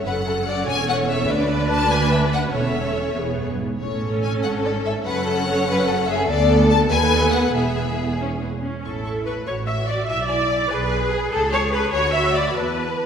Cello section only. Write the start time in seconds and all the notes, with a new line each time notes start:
0.05 F#2
0.67 E2
1.28 D2
2.53 E2
3.17 E2
3.38 F#2
3.59 G#2
3.80 A2
4.44 G#2
5.05 F#2
6.28 D2
6.90 D#2
7.54 E2
8.83 E4
9.46 F#4
10.08 E4
10.70 G#4
11.94 F#4
12.57 B3